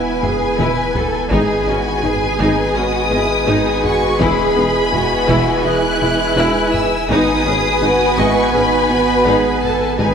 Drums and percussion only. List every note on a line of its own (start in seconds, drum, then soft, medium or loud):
0.23 taiko low-mid medium
0.59 taiko mid medium
0.95 taiko low loud
1.31 taiko loud
2.04 taiko low-mid medium
2.40 taiko medium
3.84 taiko low-mid medium
4.21 taiko loud
4.93 taiko low-mid medium
5.29 taiko medium
6.74 taiko low-mid medium
7.10 taiko loud
7.83 taiko low-mid medium
8.18 taiko medium
9.63 taiko low-mid medium
9.99 taiko loud